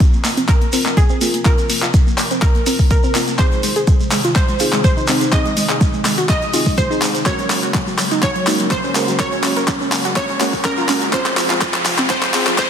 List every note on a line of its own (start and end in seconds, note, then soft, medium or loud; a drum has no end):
0.00 7.22 C3 medium
0.00 3.35 F3 medium
0.00 3.35 A#3 medium
0.00 0.70 C4 medium
0.00 0.70 F4 medium
0.00 3.35 F4 medium
0.00 0.48 A#4 medium
0.00 0.70 A#4 loud
0.00 3.35 A#4 medium
0.00 kick loud
0.00 closed hi-hat medium
0.00 shekere soft
0.13 0.21 A#1 medium
0.13 0.20 A#3 medium
0.13 shekere soft
0.24 0.34 A#1 loud
0.24 0.33 A#3 medium
0.24 clap soft
0.24 open hi-hat loud
0.24 shekere medium
0.37 0.45 A#1 medium
0.37 0.45 C4 medium
0.37 closed hi-hat soft
0.37 shekere soft
0.49 0.94 A#4 medium
0.49 kick loud
0.49 clap soft
0.49 closed hi-hat medium
0.49 shekere medium
0.61 0.69 A#1 medium
0.61 0.69 A#3 medium
0.61 closed hi-hat soft
0.61 shekere soft
0.73 0.82 A#1 loud
0.73 0.81 C4 medium
0.73 1.19 C4 medium
0.73 1.19 F4 medium
0.73 1.19 A#4 loud
0.73 open hi-hat loud
0.73 shekere medium
0.86 0.94 A#1 medium
0.86 0.93 A#3 medium
0.86 clap soft
0.86 closed hi-hat medium
0.86 shekere soft
0.97 1.05 A#3 medium
0.97 1.42 G#4 medium
0.97 kick loud
0.97 closed hi-hat medium
0.97 shekere soft
1.09 1.18 A#1 medium
1.09 1.17 C4 medium
1.09 shekere soft
1.21 1.30 A#1 loud
1.21 1.29 A#3 medium
1.21 1.43 C4 medium
1.21 1.43 F4 medium
1.21 1.43 A#4 medium
1.21 open hi-hat loud
1.21 shekere medium
1.34 1.42 A#1 medium
1.34 1.41 A#3 medium
1.34 closed hi-hat soft
1.34 shekere soft
1.45 2.64 C4 medium
1.45 1.54 F4 medium
1.45 2.64 F4 medium
1.45 2.64 A#4 loud
1.45 2.39 A#4 medium
1.45 kick loud
1.45 clap soft
1.45 closed hi-hat medium
1.45 shekere soft
1.58 1.66 A#1 medium
1.58 1.66 A#3 medium
1.58 closed hi-hat soft
1.58 shekere soft
1.69 1.79 A#1 loud
1.69 1.78 A#3 medium
1.69 open hi-hat loud
1.69 shekere medium
1.82 1.91 A#1 medium
1.82 1.90 F4 medium
1.82 clap soft
1.82 shekere soft
1.94 2.02 A#3 medium
1.94 kick loud
1.94 closed hi-hat medium
1.94 shekere medium
2.07 2.15 A#1 medium
2.07 2.14 A#3 medium
2.07 shekere soft
2.18 2.27 A#1 loud
2.18 2.26 A#3 medium
2.18 clap medium
2.18 open hi-hat loud
2.18 shekere medium
2.31 2.39 A#1 medium
2.31 2.38 C4 medium
2.31 closed hi-hat soft
2.31 shekere soft
2.42 2.51 A#3 medium
2.42 2.90 A#4 medium
2.42 kick loud
2.42 clap medium
2.42 closed hi-hat medium
2.42 shekere soft
2.55 2.63 A#1 medium
2.55 2.62 A#3 medium
2.55 closed hi-hat soft
2.55 shekere soft
2.66 2.75 A#1 loud
2.66 3.12 C4 medium
2.66 2.75 C4 medium
2.66 3.12 F4 medium
2.66 3.12 A#4 loud
2.66 open hi-hat loud
2.66 shekere medium
2.79 2.87 A#3 medium
2.79 kick medium
2.79 open hi-hat medium
2.79 shekere soft
2.91 2.99 A#3 medium
2.91 3.41 A#4 medium
2.91 kick loud
2.91 closed hi-hat medium
2.91 shekere medium
3.03 3.11 A#1 medium
3.03 3.11 C4 medium
3.03 shekere soft
3.15 3.24 A#1 medium
3.15 3.23 A#3 medium
3.15 3.36 C4 medium
3.15 3.36 F4 medium
3.15 3.36 A#4 medium
3.15 clap medium
3.15 open hi-hat loud
3.15 shekere loud
3.27 3.36 A#1 medium
3.27 3.35 A#3 medium
3.27 closed hi-hat soft
3.27 shekere soft
3.39 7.22 D#3 medium
3.39 12.70 G#3 medium
3.39 4.57 C4 loud
3.39 7.22 D#4 medium
3.39 4.57 D#4 medium
3.39 4.57 G#4 loud
3.39 7.22 G#4 medium
3.39 3.47 G#4 loud
3.39 4.32 C5 loud
3.39 kick loud
3.39 clap medium
3.39 closed hi-hat medium
3.39 shekere medium
3.52 3.60 G#1 medium
3.52 3.59 G#3 medium
3.52 closed hi-hat soft
3.52 shekere soft
3.63 3.72 G#1 loud
3.63 3.72 G#3 medium
3.63 open hi-hat loud
3.63 shekere medium
3.76 3.84 G#1 medium
3.76 3.83 G#4 medium
3.76 closed hi-hat soft
3.76 shekere soft
3.87 3.96 G#3 medium
3.87 kick loud
3.87 closed hi-hat medium
3.87 shekere soft
4.00 4.08 G#1 medium
4.00 4.08 G#3 medium
4.00 shekere soft
4.11 4.21 G#1 loud
4.11 4.20 G#3 medium
4.11 clap medium
4.11 open hi-hat loud
4.11 shekere medium
4.24 4.32 G#1 medium
4.24 4.32 F4 medium
4.24 closed hi-hat soft
4.24 shekere soft
4.36 4.44 G#3 medium
4.36 4.81 C5 loud
4.36 kick loud
4.36 clap medium
4.36 closed hi-hat medium
4.36 shekere medium
4.48 4.56 G#3 medium
4.48 closed hi-hat soft
4.48 shekere soft
4.59 4.69 G#1 loud
4.59 5.06 C4 medium
4.59 5.06 D#4 medium
4.59 4.68 F4 medium
4.59 5.06 G#4 loud
4.59 open hi-hat loud
4.59 shekere medium
4.73 4.81 G#1 medium
4.73 4.80 G#3 medium
4.73 clap medium
4.73 closed hi-hat soft
4.73 shekere soft
4.84 4.92 G#3 medium
4.84 5.34 C5 medium
4.84 kick loud
4.84 closed hi-hat medium
4.84 shekere medium
4.97 5.04 D#4 medium
4.97 shekere soft
5.08 5.17 G#1 loud
5.08 5.17 G#3 medium
5.08 5.30 C4 medium
5.08 5.30 D#4 medium
5.08 5.30 G#4 medium
5.08 clap medium
5.08 open hi-hat loud
5.08 shekere medium
5.21 5.29 G#1 medium
5.21 5.28 G#3 medium
5.21 closed hi-hat soft
5.21 shekere soft
5.32 6.51 D#4 medium
5.32 5.41 G#4 loud
5.32 6.51 G#4 loud
5.32 6.28 D#5 loud
5.32 kick loud
5.32 clap medium
5.32 closed hi-hat medium
5.32 shekere medium
5.45 5.53 G#3 medium
5.45 closed hi-hat soft
5.45 shekere soft
5.57 5.66 G#1 loud
5.57 5.65 G#3 medium
5.57 open hi-hat loud
5.57 shekere medium
5.69 5.78 G#1 medium
5.69 5.77 G#4 medium
5.69 clap medium
5.69 closed hi-hat soft
5.69 shekere soft
5.81 5.89 G#3 medium
5.81 kick loud
5.81 closed hi-hat medium
5.81 shekere medium
5.94 6.01 G#3 medium
5.94 shekere soft
6.05 6.13 G#3 medium
6.05 clap medium
6.05 open hi-hat loud
6.05 shekere medium
6.18 6.26 G#1 medium
6.18 6.25 F#4 medium
6.18 closed hi-hat soft
6.18 shekere soft
6.29 6.79 D#5 loud
6.29 kick loud
6.29 clap medium
6.29 closed hi-hat medium
6.29 shekere soft
6.42 6.50 G#2 medium
6.42 6.49 G#3 medium
6.42 closed hi-hat soft
6.42 shekere soft
6.53 6.63 G#1 medium
6.53 6.88 C4 loud
6.53 6.88 D#4 medium
6.53 6.62 F4 medium
6.53 6.88 G#4 loud
6.53 open hi-hat loud
6.53 shekere medium
6.66 6.74 G#2 medium
6.66 6.74 G#3 medium
6.66 kick medium
6.66 open hi-hat medium
6.66 shekere soft
6.78 6.86 G#3 medium
6.78 7.28 C5 loud
6.78 kick loud
6.78 closed hi-hat medium
6.78 shekere medium
6.90 7.03 G#1 medium
6.90 7.23 C4 medium
6.90 6.98 D#4 medium
6.90 7.23 D#4 medium
6.90 7.23 G#4 loud
6.90 shekere soft
7.02 7.11 G#2 loud
7.02 7.10 G#3 medium
7.02 clap medium
7.02 open hi-hat loud
7.02 shekere medium
7.15 7.22 G#3 medium
7.15 closed hi-hat soft
7.15 shekere soft
7.26 11.09 C#3 medium
7.26 11.09 F#3 medium
7.26 8.44 G#3 loud
7.26 11.09 A#3 medium
7.26 8.44 A#3 medium
7.26 11.09 F#4 medium
7.26 7.34 F#4 medium
7.26 8.44 F#4 medium
7.26 8.44 A#4 loud
7.26 8.22 C#5 loud
7.26 kick loud
7.26 clap medium
7.26 closed hi-hat medium
7.26 riser medium
7.26 shekere medium
7.39 7.46 F#3 medium
7.39 closed hi-hat soft
7.39 shekere soft
7.50 7.59 F#3 medium
7.50 clap medium
7.50 open hi-hat loud
7.50 shekere medium
7.63 7.70 F#4 medium
7.63 closed hi-hat soft
7.63 shekere soft
7.74 7.83 F#3 medium
7.74 kick loud
7.74 clap medium
7.74 closed hi-hat medium
7.74 shekere soft
7.87 7.95 F#3 medium
7.87 shekere soft
7.98 8.07 F#3 medium
7.98 clap medium
7.98 open hi-hat loud
7.98 shekere medium
8.11 8.19 D#4 medium
8.11 closed hi-hat soft
8.11 shekere soft
8.23 8.31 F#3 medium
8.23 8.73 C#5 loud
8.23 kick loud
8.23 clap medium
8.23 closed hi-hat medium
8.23 shekere soft
8.35 8.43 F#3 medium
8.35 closed hi-hat soft
8.35 shekere soft
8.47 8.93 G#3 medium
8.47 8.93 A#3 medium
8.47 8.93 C#4 medium
8.47 8.55 D#4 medium
8.47 8.93 F#4 medium
8.47 8.93 A#4 loud
8.47 clap medium
8.47 open hi-hat loud
8.47 shekere loud
8.59 8.67 F#3 medium
8.59 closed hi-hat soft
8.59 shekere soft
8.71 8.80 F#3 medium
8.71 9.21 C5 loud
8.71 kick loud
8.71 clap medium
8.71 closed hi-hat medium
8.71 shekere soft
8.84 8.91 C#4 medium
8.84 shekere soft
8.95 9.04 F#3 medium
8.95 9.17 G#3 medium
8.95 9.17 A#3 medium
8.95 9.17 C#4 medium
8.95 9.17 F#4 medium
8.95 9.17 A#4 medium
8.95 clap medium
8.95 open hi-hat loud
8.95 shekere loud
9.08 9.16 F#3 medium
9.08 closed hi-hat soft
9.08 shekere soft
9.20 10.38 G#3 loud
9.20 9.28 A#4 medium
9.20 10.15 C#5 loud
9.20 kick loud
9.20 clap medium
9.20 closed hi-hat medium
9.20 shekere medium
9.32 9.40 C#4 medium
9.32 closed hi-hat soft
9.32 shekere soft
9.44 9.52 C#4 medium
9.44 clap medium
9.44 open hi-hat loud
9.44 shekere medium
9.56 9.64 A#4 medium
9.56 closed hi-hat medium
9.56 shekere soft
9.68 9.76 C#4 medium
9.68 kick loud
9.68 clap medium
9.68 closed hi-hat medium
9.68 shekere soft
9.81 9.88 C#4 medium
9.81 shekere soft
9.92 10.01 C#4 medium
9.92 clap medium
9.92 open hi-hat loud
9.92 shekere medium
10.05 10.12 F#4 medium
10.05 closed hi-hat medium
10.05 shekere soft
10.16 10.25 C#4 medium
10.16 10.66 C#5 loud
10.16 kick loud
10.16 clap medium
10.16 closed hi-hat medium
10.16 shekere soft
10.29 10.37 C#4 medium
10.29 closed hi-hat soft
10.29 shekere soft
10.41 10.86 G#3 medium
10.41 10.86 A#3 medium
10.41 10.86 C#4 medium
10.41 10.49 F#4 loud
10.41 10.86 F#4 medium
10.41 10.86 A#4 loud
10.41 clap medium
10.41 open hi-hat loud
10.41 shekere medium
10.53 10.61 C#4 medium
10.53 kick medium
10.53 open hi-hat medium
10.53 shekere soft
10.65 10.73 C#4 medium
10.65 11.10 A#4 loud
10.65 kick loud
10.65 clap medium
10.65 closed hi-hat medium
10.65 shekere medium
10.77 10.85 F4 medium
10.77 shekere soft
10.89 11.11 G#3 medium
10.89 11.11 A#3 medium
10.89 10.97 C#4 medium
10.89 11.11 C#4 medium
10.89 11.11 F#4 medium
10.89 11.11 A#4 medium
10.89 clap medium
10.89 open hi-hat loud
10.89 shekere medium
11.02 11.09 C#4 medium
11.02 closed hi-hat medium
11.02 shekere soft
11.13 12.70 C3 medium
11.13 12.70 F3 medium
11.13 12.31 C4 loud
11.13 12.31 F4 medium
11.13 12.70 F4 medium
11.13 11.22 F4 loud
11.13 12.70 G#4 medium
11.13 12.06 C5 loud
11.13 kick loud
11.13 clap medium
11.13 closed hi-hat medium
11.13 shekere medium
11.26 11.33 F3 medium
11.26 clap medium
11.26 closed hi-hat soft
11.26 shekere soft
11.37 11.46 F3 medium
11.37 clap medium
11.37 open hi-hat loud
11.37 shekere medium
11.50 11.58 F4 medium
11.50 clap medium
11.50 closed hi-hat medium
11.50 shekere soft
11.61 11.70 F3 medium
11.61 kick loud
11.61 clap medium
11.61 closed hi-hat medium
11.61 shekere soft
11.74 11.82 F3 medium
11.74 clap medium
11.74 shekere soft
11.85 11.94 F3 medium
11.85 clap medium
11.85 open hi-hat loud
11.85 shekere medium
11.98 12.06 C4 loud
11.98 clap medium
11.98 closed hi-hat medium
11.98 shekere soft
12.10 12.18 F3 medium
12.10 12.55 C5 loud
12.10 kick loud
12.10 clap medium
12.10 closed hi-hat medium
12.10 shekere soft
12.23 12.30 F3 medium
12.23 clap medium
12.23 closed hi-hat soft
12.23 shekere soft
12.34 12.70 C4 medium
12.34 12.42 C4 loud
12.34 12.70 F4 medium
12.34 12.70 G#4 loud
12.34 clap loud
12.34 open hi-hat loud
12.34 shekere medium
12.47 12.54 F3 medium
12.47 clap medium
12.47 closed hi-hat medium
12.47 shekere soft
12.58 12.67 F3 medium
12.58 12.70 C5 loud
12.58 kick loud
12.58 clap loud
12.58 closed hi-hat medium
12.58 shekere soft